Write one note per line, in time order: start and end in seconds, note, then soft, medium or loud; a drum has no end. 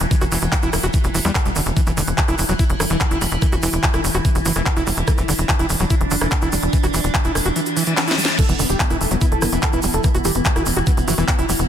0.00 0.07 E1 medium
0.00 8.37 E3 medium
0.00 1.79 F#3 medium
0.00 closed hi-hat medium
0.00 shaker soft
0.11 0.16 E3 medium
0.11 kick loud
0.11 closed hi-hat medium
0.11 shaker medium
0.21 0.27 E1 medium
0.21 0.24 F#4 loud
0.21 cross-stick soft
0.21 closed hi-hat medium
0.21 shaker soft
0.32 0.38 E1 loud
0.32 0.39 E3 medium
0.32 open hi-hat loud
0.32 shaker loud
0.42 0.48 E1 medium
0.42 closed hi-hat medium
0.42 shaker soft
0.52 0.55 E3 medium
0.52 kick loud
0.52 clap loud
0.52 closed hi-hat medium
0.52 shaker medium
0.63 0.69 E1 medium
0.63 0.70 E4 loud
0.63 closed hi-hat medium
0.63 shaker soft
0.73 0.79 E1 loud
0.73 cross-stick medium
0.73 open hi-hat loud
0.73 shaker medium
0.83 0.90 E1 medium
0.83 0.86 F#4 medium
0.83 closed hi-hat medium
0.83 shaker soft
0.93 0.98 E3 medium
0.93 kick loud
0.93 closed hi-hat medium
0.93 shaker medium
1.04 1.10 E1 medium
1.04 closed hi-hat medium
1.04 shaker soft
1.14 1.21 E1 loud
1.14 1.19 E3 medium
1.14 open hi-hat loud
1.14 shaker medium
1.25 1.31 E2 medium
1.25 1.32 G3 loud
1.25 closed hi-hat medium
1.25 shaker soft
1.35 kick loud
1.35 cross-stick soft
1.35 clap loud
1.35 closed hi-hat medium
1.35 shaker medium
1.46 1.52 E1 medium
1.46 1.50 G3 medium
1.46 closed hi-hat medium
1.46 shaker soft
1.56 1.62 E1 loud
1.56 1.60 D3 loud
1.56 open hi-hat loud
1.56 shaker loud
1.66 1.72 E1 medium
1.66 closed hi-hat medium
1.66 shaker soft
1.77 1.81 E3 medium
1.77 5.10 E4 medium
1.77 kick loud
1.77 closed hi-hat medium
1.77 shaker medium
1.87 1.93 E1 medium
1.87 1.92 E3 medium
1.87 closed hi-hat medium
1.87 shaker soft
1.97 2.03 E1 loud
1.97 2.02 D3 medium
1.97 open hi-hat loud
1.97 shaker medium
2.07 2.14 E1 medium
2.07 closed hi-hat medium
2.07 shaker soft
2.18 2.23 E3 medium
2.18 kick loud
2.18 clap loud
2.18 closed hi-hat medium
2.18 shaker medium
2.28 2.34 E1 medium
2.28 2.35 E4 loud
2.28 cross-stick soft
2.28 closed hi-hat medium
2.28 shaker soft
2.38 2.45 E1 loud
2.38 open hi-hat loud
2.38 shaker medium
2.49 2.55 E1 medium
2.49 2.54 F#3 medium
2.49 closed hi-hat medium
2.49 shaker soft
2.59 2.64 E4 medium
2.59 kick loud
2.59 closed hi-hat medium
2.59 shaker medium
2.70 2.76 E1 medium
2.70 closed hi-hat medium
2.80 2.86 F#1 loud
2.80 2.85 D3 medium
2.80 cross-stick medium
2.80 open hi-hat loud
2.80 shaker loud
2.90 2.96 E1 medium
2.90 2.97 E3 medium
2.90 closed hi-hat medium
2.90 shaker soft
3.00 kick loud
3.00 clap loud
3.00 closed hi-hat medium
3.00 shaker soft
3.11 3.17 E1 medium
3.11 3.18 E4 loud
3.11 closed hi-hat medium
3.11 shaker soft
3.21 3.27 E1 loud
3.21 3.24 G3 medium
3.21 open hi-hat loud
3.21 shaker loud
3.31 3.38 E1 medium
3.31 closed hi-hat medium
3.31 shaker soft
3.42 3.47 E3 medium
3.42 kick loud
3.42 cross-stick soft
3.42 closed hi-hat medium
3.42 shaker soft
3.52 3.59 E1 medium
3.52 3.55 F#4 loud
3.52 closed hi-hat medium
3.52 shaker soft
3.63 3.69 E1 loud
3.63 3.70 E3 medium
3.63 open hi-hat loud
3.63 shaker medium
3.72 3.79 E1 medium
3.72 closed hi-hat medium
3.72 shaker soft
3.83 3.86 E3 medium
3.83 kick loud
3.83 clap loud
3.83 closed hi-hat medium
3.83 shaker soft
3.94 4.00 E1 medium
3.94 4.01 E4 loud
3.94 cross-stick medium
3.94 closed hi-hat medium
3.94 shaker soft
4.04 4.10 E1 loud
4.04 open hi-hat loud
4.04 shaker medium
4.14 4.21 E1 medium
4.14 4.17 F#4 medium
4.14 closed hi-hat medium
4.14 shaker soft
4.25 4.29 E3 medium
4.25 kick loud
4.25 closed hi-hat medium
4.25 shaker soft
4.35 4.41 E1 medium
4.35 closed hi-hat medium
4.35 shaker soft
4.45 4.52 F#1 loud
4.45 4.52 E3 medium
4.45 open hi-hat loud
4.45 shaker medium
4.55 4.62 E1 medium
4.55 4.63 E3 medium
4.55 cross-stick soft
4.55 closed hi-hat medium
4.55 shaker soft
4.66 kick loud
4.66 clap loud
4.66 closed hi-hat medium
4.66 shaker soft
4.77 4.83 E1 medium
4.77 4.83 E4 loud
4.77 closed hi-hat medium
4.77 shaker soft
4.87 4.93 E1 loud
4.87 4.90 G3 medium
4.87 open hi-hat loud
4.87 shaker medium
4.97 5.03 E1 medium
4.97 closed hi-hat medium
4.97 shaker soft
5.08 5.12 E3 medium
5.08 8.41 D4 medium
5.08 kick loud
5.08 cross-stick medium
5.08 closed hi-hat medium
5.08 shaker soft
5.18 5.24 E1 medium
5.18 5.23 E3 medium
5.18 closed hi-hat medium
5.18 shaker soft
5.28 5.34 E1 loud
5.28 5.33 D3 medium
5.28 open hi-hat loud
5.28 shaker medium
5.39 5.45 E1 medium
5.39 closed hi-hat medium
5.39 shaker soft
5.49 5.54 E3 medium
5.49 kick loud
5.49 clap loud
5.49 closed hi-hat medium
5.49 shaker soft
5.59 5.65 E1 medium
5.59 5.66 E4 loud
5.59 closed hi-hat medium
5.59 shaker soft
5.70 5.76 E1 loud
5.70 open hi-hat loud
5.70 shaker medium
5.80 5.86 E1 medium
5.80 5.85 F#3 medium
5.80 closed hi-hat medium
5.80 shaker soft
5.90 5.95 E4 medium
5.90 kick loud
5.90 closed hi-hat medium
5.90 shaker medium
6.01 6.07 E1 medium
6.01 closed hi-hat medium
6.11 6.17 F#1 loud
6.11 6.16 D3 medium
6.11 open hi-hat loud
6.11 shaker medium
6.21 6.28 E1 medium
6.21 6.28 E3 medium
6.21 cross-stick medium
6.21 closed hi-hat medium
6.21 shaker soft
6.31 kick loud
6.31 clap loud
6.31 closed hi-hat medium
6.31 shaker soft
6.42 6.48 E1 medium
6.42 6.49 E4 loud
6.42 closed hi-hat medium
6.42 shaker soft
6.52 6.59 E1 loud
6.52 6.55 G3 medium
6.52 open hi-hat loud
6.52 shaker medium
6.62 6.69 E1 medium
6.62 closed hi-hat medium
6.62 shaker soft
6.73 6.78 E3 medium
6.73 kick loud
6.73 closed hi-hat medium
6.73 shaker medium
6.83 6.90 E1 medium
6.83 6.86 F#4 loud
6.83 cross-stick soft
6.83 closed hi-hat medium
6.83 shaker soft
6.94 7.00 E1 loud
6.94 7.01 E3 medium
6.94 open hi-hat loud
6.94 shaker medium
7.04 7.10 E1 medium
7.04 closed hi-hat medium
7.04 shaker soft
7.15 7.17 E3 medium
7.15 kick loud
7.15 clap loud
7.15 closed hi-hat medium
7.15 shaker soft
7.24 7.31 E1 medium
7.24 7.32 E4 medium
7.24 closed hi-hat medium
7.24 shaker soft
7.35 7.41 E1 loud
7.35 cross-stick medium
7.35 open hi-hat loud
7.35 shaker medium
7.45 7.52 E1 medium
7.45 7.48 F#4 medium
7.45 closed hi-hat medium
7.45 shaker soft
7.56 7.60 E3 medium
7.56 closed hi-hat medium
7.56 reverse cymbal medium
7.56 shaker medium
7.66 closed hi-hat medium
7.66 shaker soft
7.77 7.83 E3 medium
7.77 open hi-hat loud
7.77 shaker medium
7.86 7.94 E3 medium
7.86 closed hi-hat medium
7.86 shaker soft
7.97 snare medium
7.97 clap loud
7.97 closed hi-hat medium
7.97 shaker soft
8.07 8.14 E4 loud
8.07 snare medium
8.07 closed hi-hat medium
8.07 shaker soft
8.18 8.21 G3 medium
8.18 open hi-hat loud
8.18 shaker medium
8.25 snare medium
8.25 closed hi-hat medium
8.25 shaker soft
8.38 11.68 E3 medium
8.38 8.43 E3 medium
8.38 11.68 E4 medium
8.38 8.45 A4 loud
8.38 kick loud
8.38 closed hi-hat medium
8.38 crash medium
8.38 shaker medium
8.49 8.55 E1 medium
8.49 8.54 E3 medium
8.49 8.56 B3 medium
8.49 closed hi-hat medium
8.49 shaker soft
8.59 8.65 E1 loud
8.59 8.64 D3 medium
8.59 8.66 B3 medium
8.59 open hi-hat loud
8.59 shaker medium
8.70 8.76 E1 medium
8.70 8.76 G4 medium
8.70 closed hi-hat medium
8.70 shaker soft
8.80 8.85 E3 medium
8.80 8.87 B3 medium
8.80 kick loud
8.80 clap loud
8.80 closed hi-hat medium
8.80 shaker medium
8.90 8.96 E1 medium
8.90 8.97 B3 medium
8.90 8.97 E4 loud
8.90 cross-stick soft
8.90 closed hi-hat medium
8.90 shaker soft
9.01 9.07 E1 loud
9.01 9.07 A4 medium
9.01 open hi-hat loud
9.01 shaker medium
9.11 9.17 E1 medium
9.11 9.16 F#3 medium
9.11 9.18 B3 medium
9.11 closed hi-hat medium
9.11 shaker soft
9.21 9.28 B3 medium
9.21 9.26 E4 medium
9.21 kick loud
9.21 closed hi-hat medium
9.21 shaker soft
9.32 9.38 E1 medium
9.32 9.38 A4 loud
9.32 closed hi-hat medium
9.42 9.48 F#1 loud
9.42 9.47 D3 medium
9.42 9.49 B3 medium
9.42 cross-stick medium
9.42 open hi-hat loud
9.42 shaker medium
9.52 9.59 E1 medium
9.52 9.59 E3 medium
9.52 9.59 B3 medium
9.52 closed hi-hat medium
9.52 shaker soft
9.62 9.70 A4 medium
9.62 kick loud
9.62 clap loud
9.62 closed hi-hat medium
9.62 shaker medium
9.73 9.79 E1 medium
9.73 9.80 B3 medium
9.73 9.80 E4 loud
9.73 closed hi-hat medium
9.73 shaker soft
9.83 9.90 E1 loud
9.83 9.86 G3 medium
9.83 9.90 B3 medium
9.83 open hi-hat loud
9.83 shaker loud
9.93 10.00 E1 medium
9.93 10.01 A4 medium
9.93 closed hi-hat medium
9.93 shaker soft
10.04 10.09 E3 medium
10.04 10.11 B3 medium
10.04 kick loud
10.04 cross-stick soft
10.04 closed hi-hat medium
10.04 shaker soft
10.15 10.21 E1 medium
10.15 10.21 B3 medium
10.15 10.17 F#4 loud
10.15 closed hi-hat medium
10.15 shaker soft
10.25 10.31 E1 loud
10.25 10.32 E3 medium
10.25 10.32 G4 loud
10.25 open hi-hat loud
10.25 shaker medium
10.35 10.41 E1 medium
10.35 10.42 B3 medium
10.35 closed hi-hat medium
10.35 shaker soft
10.45 10.48 E3 medium
10.45 10.52 B3 medium
10.45 kick loud
10.45 clap loud
10.45 closed hi-hat medium
10.45 shaker medium
10.56 10.62 E1 medium
10.56 10.63 E4 loud
10.56 10.63 F#4 medium
10.56 cross-stick medium
10.56 closed hi-hat medium
10.56 shaker soft
10.66 10.72 E1 loud
10.66 10.73 B3 medium
10.66 open hi-hat loud
10.66 shaker loud
10.77 10.83 E1 medium
10.77 10.79 F#4 medium
10.77 10.83 G4 loud
10.77 closed hi-hat medium
10.77 shaker soft
10.87 10.92 E3 medium
10.87 10.94 B3 medium
10.87 kick loud
10.87 closed hi-hat medium
10.87 shaker medium
10.97 11.03 E1 medium
10.97 11.04 B3 medium
10.97 closed hi-hat medium
10.97 shaker soft
11.08 11.14 F#1 loud
11.08 11.15 E3 medium
11.08 11.14 F#4 loud
11.08 open hi-hat loud
11.08 shaker medium
11.18 11.24 E1 medium
11.18 11.25 E3 medium
11.18 11.25 B3 medium
11.18 cross-stick soft
11.18 closed hi-hat medium
11.18 shaker soft
11.28 11.35 B3 medium
11.28 kick loud
11.28 clap loud
11.28 closed hi-hat medium
11.28 shaker medium
11.39 11.45 E1 medium
11.39 11.45 E4 loud
11.39 11.46 E4 loud
11.39 closed hi-hat medium
11.39 shaker soft
11.49 11.55 E1 loud
11.49 11.52 G3 medium
11.49 11.56 B3 medium
11.49 open hi-hat loud
11.49 shaker loud
11.59 11.65 E1 medium
11.59 11.66 B3 medium
11.59 closed hi-hat medium
11.59 shaker soft